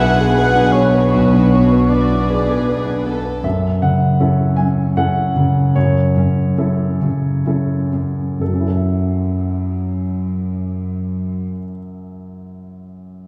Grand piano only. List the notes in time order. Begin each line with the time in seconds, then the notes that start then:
Already playing: B1 D4 E4
0.00 B4
0.20 A4
0.38 B4
0.56 D4
0.74 B3
0.94 B4
1.14 B1
1.34 D4
1.54 B3
1.72 B4
1.91 D4
2.12 E4
2.30 B4
2.50 A4
2.69 B4
2.87 D4
3.06 B3
3.25 B4
3.44 F#2 E5
3.82 C#3 F#5
4.20 C#4 E4 A4
4.56 C#4 G#5
4.97 C#4 E4 A4 F#5
5.37 C#3
5.75 F#2 C#5
6.18 C#4
6.58 C#4 E4 A4
7.02 C#3
7.46 C#4 E4 A4
7.93 C#4
8.40 F#2 A4
8.47 F#3
8.54 C#4
8.60 E4
8.68 A4
8.75 E5